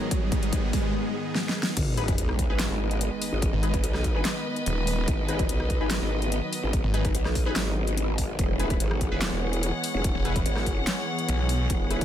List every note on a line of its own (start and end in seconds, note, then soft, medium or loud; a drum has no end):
0.00 1.73 G#2 medium
0.00 1.73 D#3 medium
0.00 0.94 G#3 medium
0.00 1.73 B3 medium
0.00 0.94 F#4 medium
0.00 1.73 G#4 medium
0.00 0.94 A#4 medium
0.00 0.94 C#5 medium
0.00 1.73 D#5 medium
0.00 riser medium
0.11 kick loud
0.11 closed hi-hat medium
0.32 kick loud
0.32 closed hi-hat soft
0.43 closed hi-hat medium
0.53 kick loud
0.53 closed hi-hat medium
0.73 kick loud
0.73 open hi-hat medium
1.35 snare medium
1.49 snare medium
1.63 snare loud
1.77 2.17 G#1 loud
1.77 8.35 D#3 medium
1.77 5.04 G#3 medium
1.77 8.35 B3 medium
1.77 kick loud
1.77 closed hi-hat medium
1.77 crash loud
1.77 sub drop medium
1.92 9.04 B4 medium
1.97 2.12 D#4 medium
1.97 2.12 G#4 medium
1.97 2.12 B4 medium
1.97 cross-stick medium
1.97 closed hi-hat medium
2.03 9.71 D#5 medium
2.08 kick loud
2.08 closed hi-hat medium
2.18 2.48 B1 loud
2.18 closed hi-hat medium
2.29 cross-stick medium
2.39 kick medium
2.39 closed hi-hat medium
2.50 2.69 G#1 loud
2.50 2.58 D#4 medium
2.50 2.58 G#4 medium
2.50 2.58 B4 medium
2.59 snare loud
2.59 clap loud
2.59 closed hi-hat medium
2.70 3.10 G#1 medium
2.91 closed hi-hat medium
3.01 closed hi-hat medium
3.22 open hi-hat medium
3.32 3.51 G#1 loud
3.42 kick loud
3.42 closed hi-hat medium
3.53 3.82 G#1 loud
3.63 3.78 D#4 medium
3.63 3.78 G#4 medium
3.63 3.78 B4 medium
3.63 cross-stick medium
3.63 closed hi-hat medium
3.74 kick loud
3.74 closed hi-hat medium
3.84 4.23 B1 loud
3.84 closed hi-hat medium
3.94 cross-stick medium
3.94 snare soft
4.04 kick medium
4.04 closed hi-hat medium
4.15 4.24 D#4 medium
4.15 4.24 G#4 medium
4.15 4.24 B4 medium
4.25 snare loud
4.25 clap loud
4.25 closed hi-hat medium
4.56 closed hi-hat medium
4.66 5.06 D#1 medium
4.66 closed hi-hat medium
4.87 open hi-hat medium
5.08 5.48 G#1 loud
5.08 8.36 F#3 medium
5.08 kick loud
5.08 closed hi-hat medium
5.28 5.44 D#4 medium
5.28 5.44 G#4 medium
5.28 5.44 B4 medium
5.28 cross-stick medium
5.28 closed hi-hat medium
5.39 kick loud
5.39 closed hi-hat medium
5.49 5.79 B1 loud
5.49 closed hi-hat medium
5.60 cross-stick medium
5.70 kick medium
5.70 closed hi-hat medium
5.81 6.00 G#1 medium
5.81 5.90 D#4 medium
5.81 5.90 G#4 medium
5.81 5.89 B4 medium
5.91 snare loud
5.91 clap medium
5.91 closed hi-hat medium
6.01 6.41 G#1 medium
6.22 closed hi-hat soft
6.32 closed hi-hat medium
6.53 open hi-hat medium
6.63 6.82 G#1 loud
6.73 kick loud
6.73 closed hi-hat medium
6.84 7.13 G#1 loud
6.94 7.09 D#4 medium
6.94 7.09 G#4 medium
6.94 7.09 B4 medium
6.94 cross-stick medium
6.94 closed hi-hat medium
7.05 kick loud
7.05 closed hi-hat medium
7.15 7.54 B1 loud
7.15 closed hi-hat medium
7.25 cross-stick medium
7.25 snare soft
7.35 kick medium
7.35 open hi-hat medium
7.46 7.55 D#4 medium
7.46 7.55 G#4 medium
7.46 7.55 B4 medium
7.56 8.37 G#1 loud
7.56 snare loud
7.56 clap medium
7.56 closed hi-hat medium
7.87 closed hi-hat soft
7.97 closed hi-hat medium
8.18 kick medium
8.18 open hi-hat medium
8.39 8.79 E1 loud
8.39 12.05 E3 medium
8.39 12.05 G#3 medium
8.39 12.05 B3 medium
8.39 12.05 G#4 medium
8.39 kick loud
8.39 closed hi-hat medium
8.45 12.05 C#5 medium
8.59 8.75 E4 medium
8.59 8.75 G#4 medium
8.59 8.75 B4 medium
8.59 12.05 F#5 medium
8.59 cross-stick medium
8.59 closed hi-hat medium
8.70 kick loud
8.70 closed hi-hat medium
8.80 9.10 G#1 loud
8.80 closed hi-hat medium
8.91 cross-stick medium
9.01 kick medium
9.01 closed hi-hat medium
9.12 9.31 E1 loud
9.12 9.21 E4 medium
9.12 9.21 G#4 medium
9.12 9.21 B4 medium
9.22 snare loud
9.22 clap medium
9.22 closed hi-hat medium
9.32 9.72 E1 loud
9.53 closed hi-hat soft
9.63 closed hi-hat medium
9.84 open hi-hat medium
9.94 10.13 E1 loud
10.04 kick loud
10.04 closed hi-hat medium
10.15 10.44 E1 loud
10.25 10.40 E4 medium
10.25 10.40 G#4 medium
10.25 10.40 B4 medium
10.25 cross-stick medium
10.25 closed hi-hat medium
10.36 kick loud
10.36 closed hi-hat medium
10.46 10.86 G#1 loud
10.46 closed hi-hat medium
10.56 cross-stick medium
10.56 snare soft
10.66 kick medium
10.66 closed hi-hat medium
10.87 snare loud
10.87 clap medium
10.87 closed hi-hat medium
11.19 closed hi-hat medium
11.28 11.68 B1 medium
11.28 closed hi-hat medium
11.49 open hi-hat loud
11.70 12.05 E1 loud
11.70 kick loud
11.70 closed hi-hat medium
11.91 12.05 E4 medium
11.91 12.05 G#4 medium
11.91 12.05 B4 medium
11.91 cross-stick medium
11.91 closed hi-hat medium
12.01 kick loud
12.01 closed hi-hat medium